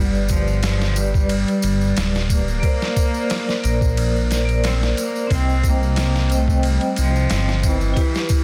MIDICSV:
0, 0, Header, 1, 5, 480
1, 0, Start_track
1, 0, Tempo, 666667
1, 1898, Time_signature, 4, 2, 24, 8
1, 6076, End_track
2, 0, Start_track
2, 0, Title_t, "Vibraphone"
2, 0, Program_c, 0, 11
2, 0, Note_on_c, 0, 55, 80
2, 0, Note_on_c, 0, 67, 75
2, 0, Note_on_c, 0, 71, 78
2, 10, Note_on_c, 0, 74, 97
2, 95, Control_c, 0, 64, 127
2, 660, Note_off_c, 0, 55, 0
2, 668, Note_off_c, 0, 67, 0
2, 677, Note_on_c, 0, 55, 77
2, 678, Note_off_c, 0, 71, 0
2, 688, Note_off_c, 0, 74, 0
2, 696, Note_on_c, 0, 67, 64
2, 713, Note_on_c, 0, 71, 71
2, 731, Note_on_c, 0, 74, 84
2, 1861, Note_off_c, 0, 55, 0
2, 1870, Note_off_c, 0, 67, 0
2, 1871, Note_on_c, 0, 58, 82
2, 1879, Note_off_c, 0, 71, 0
2, 1888, Note_off_c, 0, 74, 0
2, 1890, Note_on_c, 0, 70, 77
2, 1905, Note_on_c, 0, 72, 81
2, 1908, Control_c, 0, 64, 0
2, 1924, Note_on_c, 0, 74, 89
2, 2024, Control_c, 0, 64, 127
2, 2578, Note_off_c, 0, 58, 0
2, 2588, Note_off_c, 0, 70, 0
2, 2595, Note_off_c, 0, 72, 0
2, 2600, Note_on_c, 0, 58, 69
2, 2605, Note_off_c, 0, 74, 0
2, 2615, Note_on_c, 0, 70, 68
2, 2632, Note_on_c, 0, 72, 64
2, 2651, Note_on_c, 0, 74, 79
2, 3192, Note_off_c, 0, 58, 0
2, 3200, Note_off_c, 0, 70, 0
2, 3204, Note_on_c, 0, 58, 77
2, 3208, Note_off_c, 0, 72, 0
2, 3218, Note_off_c, 0, 74, 0
2, 3223, Note_on_c, 0, 70, 69
2, 3240, Note_on_c, 0, 72, 69
2, 3259, Note_on_c, 0, 74, 90
2, 3780, Note_off_c, 0, 58, 0
2, 3790, Note_off_c, 0, 70, 0
2, 3793, Note_on_c, 0, 60, 81
2, 3798, Note_off_c, 0, 72, 0
2, 3807, Note_off_c, 0, 74, 0
2, 3811, Note_on_c, 0, 72, 80
2, 3827, Control_c, 0, 64, 0
2, 3831, Note_on_c, 0, 75, 74
2, 3851, Note_on_c, 0, 79, 94
2, 3947, Control_c, 0, 64, 127
2, 4499, Note_off_c, 0, 60, 0
2, 4508, Note_off_c, 0, 72, 0
2, 4518, Note_off_c, 0, 75, 0
2, 4523, Note_on_c, 0, 60, 69
2, 4528, Note_off_c, 0, 79, 0
2, 4538, Note_on_c, 0, 72, 71
2, 4560, Note_on_c, 0, 75, 66
2, 4574, Note_on_c, 0, 79, 84
2, 5704, Note_off_c, 0, 60, 0
2, 5712, Note_off_c, 0, 72, 0
2, 5714, Note_on_c, 0, 64, 86
2, 5723, Note_off_c, 0, 75, 0
2, 5730, Note_off_c, 0, 79, 0
2, 5740, Note_on_c, 0, 67, 73
2, 5748, Control_c, 0, 64, 0
2, 5767, Note_on_c, 0, 71, 85
2, 5873, Control_c, 0, 64, 127
2, 6076, Note_off_c, 0, 64, 0
2, 6076, Note_off_c, 0, 67, 0
2, 6076, Note_off_c, 0, 71, 0
2, 6076, End_track
3, 0, Start_track
3, 0, Title_t, "Cello"
3, 0, Program_c, 1, 42
3, 0, Note_on_c, 1, 55, 93
3, 227, Note_on_c, 1, 53, 84
3, 238, Note_off_c, 1, 55, 0
3, 463, Note_off_c, 1, 53, 0
3, 466, Note_on_c, 1, 53, 82
3, 708, Note_on_c, 1, 55, 102
3, 719, Note_off_c, 1, 53, 0
3, 1663, Note_off_c, 1, 55, 0
3, 1675, Note_on_c, 1, 58, 92
3, 3078, Note_off_c, 1, 58, 0
3, 3358, Note_on_c, 1, 60, 101
3, 3462, Note_off_c, 1, 60, 0
3, 3606, Note_on_c, 1, 58, 88
3, 3817, Note_off_c, 1, 58, 0
3, 3846, Note_on_c, 1, 60, 110
3, 4092, Note_on_c, 1, 58, 104
3, 4103, Note_off_c, 1, 60, 0
3, 4568, Note_on_c, 1, 57, 97
3, 4578, Note_off_c, 1, 58, 0
3, 4809, Note_on_c, 1, 55, 93
3, 4819, Note_off_c, 1, 57, 0
3, 5033, Note_off_c, 1, 55, 0
3, 5047, Note_on_c, 1, 53, 95
3, 5519, Note_on_c, 1, 52, 76
3, 5530, Note_off_c, 1, 53, 0
3, 6076, Note_off_c, 1, 52, 0
3, 6076, End_track
4, 0, Start_track
4, 0, Title_t, "Detuned saw bass"
4, 0, Program_c, 2, 39
4, 0, Note_on_c, 2, 31, 99
4, 1041, Note_off_c, 2, 31, 0
4, 1177, Note_on_c, 2, 31, 88
4, 1391, Note_off_c, 2, 31, 0
4, 1422, Note_on_c, 2, 26, 88
4, 1879, Note_off_c, 2, 26, 0
4, 2622, Note_on_c, 2, 34, 75
4, 3559, Note_off_c, 2, 34, 0
4, 3820, Note_on_c, 2, 36, 105
4, 4884, Note_off_c, 2, 36, 0
4, 5027, Note_on_c, 2, 36, 90
4, 5236, Note_off_c, 2, 36, 0
4, 5263, Note_on_c, 2, 31, 88
4, 5719, Note_off_c, 2, 31, 0
4, 6076, End_track
5, 0, Start_track
5, 0, Title_t, "Drums"
5, 107, Note_on_c, 9, 54, 25
5, 179, Note_off_c, 9, 54, 0
5, 205, Note_on_c, 9, 54, 90
5, 213, Note_on_c, 9, 36, 88
5, 214, Note_on_c, 9, 51, 67
5, 277, Note_off_c, 9, 54, 0
5, 285, Note_off_c, 9, 36, 0
5, 286, Note_off_c, 9, 51, 0
5, 342, Note_on_c, 9, 54, 37
5, 414, Note_off_c, 9, 54, 0
5, 451, Note_on_c, 9, 51, 83
5, 452, Note_on_c, 9, 54, 50
5, 458, Note_on_c, 9, 38, 109
5, 523, Note_off_c, 9, 51, 0
5, 524, Note_off_c, 9, 54, 0
5, 530, Note_off_c, 9, 38, 0
5, 584, Note_on_c, 9, 54, 26
5, 588, Note_on_c, 9, 38, 54
5, 656, Note_off_c, 9, 54, 0
5, 660, Note_off_c, 9, 38, 0
5, 691, Note_on_c, 9, 54, 97
5, 695, Note_on_c, 9, 51, 60
5, 763, Note_off_c, 9, 54, 0
5, 767, Note_off_c, 9, 51, 0
5, 823, Note_on_c, 9, 36, 84
5, 828, Note_on_c, 9, 54, 39
5, 895, Note_off_c, 9, 36, 0
5, 900, Note_off_c, 9, 54, 0
5, 930, Note_on_c, 9, 54, 52
5, 932, Note_on_c, 9, 51, 86
5, 1002, Note_off_c, 9, 54, 0
5, 1004, Note_off_c, 9, 51, 0
5, 1064, Note_on_c, 9, 54, 26
5, 1068, Note_on_c, 9, 51, 42
5, 1136, Note_off_c, 9, 54, 0
5, 1140, Note_off_c, 9, 51, 0
5, 1169, Note_on_c, 9, 54, 93
5, 1176, Note_on_c, 9, 51, 68
5, 1241, Note_off_c, 9, 54, 0
5, 1248, Note_off_c, 9, 51, 0
5, 1304, Note_on_c, 9, 54, 39
5, 1376, Note_off_c, 9, 54, 0
5, 1415, Note_on_c, 9, 51, 88
5, 1417, Note_on_c, 9, 54, 55
5, 1423, Note_on_c, 9, 38, 105
5, 1487, Note_off_c, 9, 51, 0
5, 1489, Note_off_c, 9, 54, 0
5, 1495, Note_off_c, 9, 38, 0
5, 1549, Note_on_c, 9, 54, 23
5, 1554, Note_on_c, 9, 38, 49
5, 1621, Note_off_c, 9, 54, 0
5, 1626, Note_off_c, 9, 38, 0
5, 1653, Note_on_c, 9, 36, 86
5, 1656, Note_on_c, 9, 54, 78
5, 1657, Note_on_c, 9, 51, 65
5, 1725, Note_off_c, 9, 36, 0
5, 1728, Note_off_c, 9, 54, 0
5, 1729, Note_off_c, 9, 51, 0
5, 1786, Note_on_c, 9, 54, 35
5, 1858, Note_off_c, 9, 54, 0
5, 1893, Note_on_c, 9, 36, 102
5, 1893, Note_on_c, 9, 51, 78
5, 1895, Note_on_c, 9, 54, 48
5, 1965, Note_off_c, 9, 36, 0
5, 1965, Note_off_c, 9, 51, 0
5, 1967, Note_off_c, 9, 54, 0
5, 2028, Note_on_c, 9, 54, 24
5, 2032, Note_on_c, 9, 38, 51
5, 2100, Note_off_c, 9, 54, 0
5, 2104, Note_off_c, 9, 38, 0
5, 2134, Note_on_c, 9, 36, 91
5, 2135, Note_on_c, 9, 54, 76
5, 2137, Note_on_c, 9, 51, 65
5, 2206, Note_off_c, 9, 36, 0
5, 2207, Note_off_c, 9, 54, 0
5, 2209, Note_off_c, 9, 51, 0
5, 2263, Note_on_c, 9, 54, 39
5, 2335, Note_off_c, 9, 54, 0
5, 2375, Note_on_c, 9, 51, 81
5, 2376, Note_on_c, 9, 54, 43
5, 2382, Note_on_c, 9, 38, 109
5, 2447, Note_off_c, 9, 51, 0
5, 2448, Note_off_c, 9, 54, 0
5, 2454, Note_off_c, 9, 38, 0
5, 2512, Note_on_c, 9, 38, 39
5, 2513, Note_on_c, 9, 54, 27
5, 2584, Note_off_c, 9, 38, 0
5, 2585, Note_off_c, 9, 54, 0
5, 2618, Note_on_c, 9, 51, 60
5, 2628, Note_on_c, 9, 54, 81
5, 2690, Note_off_c, 9, 51, 0
5, 2700, Note_off_c, 9, 54, 0
5, 2745, Note_on_c, 9, 36, 87
5, 2749, Note_on_c, 9, 54, 37
5, 2817, Note_off_c, 9, 36, 0
5, 2821, Note_off_c, 9, 54, 0
5, 2860, Note_on_c, 9, 54, 49
5, 2861, Note_on_c, 9, 51, 88
5, 2932, Note_off_c, 9, 54, 0
5, 2933, Note_off_c, 9, 51, 0
5, 2996, Note_on_c, 9, 54, 27
5, 3068, Note_off_c, 9, 54, 0
5, 3100, Note_on_c, 9, 51, 64
5, 3108, Note_on_c, 9, 38, 39
5, 3108, Note_on_c, 9, 54, 79
5, 3172, Note_off_c, 9, 51, 0
5, 3180, Note_off_c, 9, 38, 0
5, 3180, Note_off_c, 9, 54, 0
5, 3231, Note_on_c, 9, 51, 39
5, 3232, Note_on_c, 9, 54, 35
5, 3303, Note_off_c, 9, 51, 0
5, 3304, Note_off_c, 9, 54, 0
5, 3338, Note_on_c, 9, 51, 84
5, 3343, Note_on_c, 9, 54, 53
5, 3346, Note_on_c, 9, 38, 107
5, 3410, Note_off_c, 9, 51, 0
5, 3415, Note_off_c, 9, 54, 0
5, 3418, Note_off_c, 9, 38, 0
5, 3478, Note_on_c, 9, 38, 52
5, 3479, Note_on_c, 9, 54, 25
5, 3550, Note_off_c, 9, 38, 0
5, 3551, Note_off_c, 9, 54, 0
5, 3581, Note_on_c, 9, 51, 62
5, 3585, Note_on_c, 9, 54, 94
5, 3653, Note_off_c, 9, 51, 0
5, 3657, Note_off_c, 9, 54, 0
5, 3713, Note_on_c, 9, 54, 36
5, 3785, Note_off_c, 9, 54, 0
5, 3819, Note_on_c, 9, 36, 94
5, 3820, Note_on_c, 9, 51, 84
5, 3829, Note_on_c, 9, 54, 44
5, 3891, Note_off_c, 9, 36, 0
5, 3892, Note_off_c, 9, 51, 0
5, 3901, Note_off_c, 9, 54, 0
5, 3955, Note_on_c, 9, 54, 25
5, 4027, Note_off_c, 9, 54, 0
5, 4057, Note_on_c, 9, 36, 88
5, 4057, Note_on_c, 9, 51, 67
5, 4063, Note_on_c, 9, 54, 79
5, 4129, Note_off_c, 9, 36, 0
5, 4129, Note_off_c, 9, 51, 0
5, 4135, Note_off_c, 9, 54, 0
5, 4196, Note_on_c, 9, 54, 39
5, 4268, Note_off_c, 9, 54, 0
5, 4293, Note_on_c, 9, 51, 79
5, 4301, Note_on_c, 9, 38, 104
5, 4305, Note_on_c, 9, 54, 44
5, 4365, Note_off_c, 9, 51, 0
5, 4373, Note_off_c, 9, 38, 0
5, 4377, Note_off_c, 9, 54, 0
5, 4433, Note_on_c, 9, 38, 48
5, 4436, Note_on_c, 9, 54, 24
5, 4505, Note_off_c, 9, 38, 0
5, 4508, Note_off_c, 9, 54, 0
5, 4534, Note_on_c, 9, 51, 61
5, 4548, Note_on_c, 9, 54, 76
5, 4606, Note_off_c, 9, 51, 0
5, 4620, Note_off_c, 9, 54, 0
5, 4664, Note_on_c, 9, 36, 81
5, 4678, Note_on_c, 9, 54, 38
5, 4736, Note_off_c, 9, 36, 0
5, 4750, Note_off_c, 9, 54, 0
5, 4774, Note_on_c, 9, 51, 80
5, 4790, Note_on_c, 9, 54, 42
5, 4846, Note_off_c, 9, 51, 0
5, 4862, Note_off_c, 9, 54, 0
5, 4903, Note_on_c, 9, 51, 40
5, 4917, Note_on_c, 9, 54, 24
5, 4975, Note_off_c, 9, 51, 0
5, 4989, Note_off_c, 9, 54, 0
5, 5014, Note_on_c, 9, 51, 66
5, 5022, Note_on_c, 9, 54, 86
5, 5086, Note_off_c, 9, 51, 0
5, 5094, Note_off_c, 9, 54, 0
5, 5153, Note_on_c, 9, 54, 42
5, 5225, Note_off_c, 9, 54, 0
5, 5253, Note_on_c, 9, 51, 83
5, 5260, Note_on_c, 9, 38, 116
5, 5260, Note_on_c, 9, 54, 50
5, 5325, Note_off_c, 9, 51, 0
5, 5332, Note_off_c, 9, 38, 0
5, 5332, Note_off_c, 9, 54, 0
5, 5392, Note_on_c, 9, 38, 48
5, 5392, Note_on_c, 9, 54, 23
5, 5464, Note_off_c, 9, 38, 0
5, 5464, Note_off_c, 9, 54, 0
5, 5495, Note_on_c, 9, 36, 91
5, 5496, Note_on_c, 9, 54, 82
5, 5497, Note_on_c, 9, 51, 66
5, 5567, Note_off_c, 9, 36, 0
5, 5568, Note_off_c, 9, 54, 0
5, 5569, Note_off_c, 9, 51, 0
5, 5623, Note_on_c, 9, 54, 41
5, 5695, Note_off_c, 9, 54, 0
5, 5734, Note_on_c, 9, 36, 101
5, 5736, Note_on_c, 9, 51, 79
5, 5737, Note_on_c, 9, 54, 44
5, 5806, Note_off_c, 9, 36, 0
5, 5808, Note_off_c, 9, 51, 0
5, 5809, Note_off_c, 9, 54, 0
5, 5865, Note_on_c, 9, 54, 24
5, 5873, Note_on_c, 9, 38, 51
5, 5937, Note_off_c, 9, 54, 0
5, 5945, Note_off_c, 9, 38, 0
5, 5968, Note_on_c, 9, 54, 73
5, 5974, Note_on_c, 9, 36, 90
5, 5974, Note_on_c, 9, 51, 65
5, 6040, Note_off_c, 9, 54, 0
5, 6046, Note_off_c, 9, 36, 0
5, 6046, Note_off_c, 9, 51, 0
5, 6076, End_track
0, 0, End_of_file